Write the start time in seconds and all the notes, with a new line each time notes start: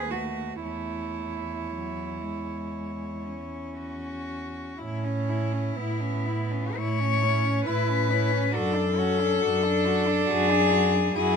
Already playing: D#2 G#4 B4
0.10 A3 F#4
0.62 E2 A3 E4 C#5
1.70 F#3
2.21 G#3
3.26 C#4
3.78 F#4
4.79 A2 C#4 E4
5.04 C#4
5.29 E4
5.53 C#4
5.76 A2 B3 E4
6.01 C#4
6.26 E4
6.51 C#4
6.75 A2 A3 E4 C#5
7.00 C#4
7.22 C#4 E4
7.45 C#4
7.65 A2 E4 B4
7.89 C#4
8.09 C#4 E4
8.32 C#4
8.52 F#2 D4 F#4 A4
8.75 D4
8.97 C#4 F#4
9.20 D4
9.41 F#2 D4 F#4
9.64 D4
9.86 F#4
10.08 D4
10.29 F#2 F#4 G#4
10.51 D4
10.72 F#4
10.94 D4
11.15 F#2 E4 F#4 G#4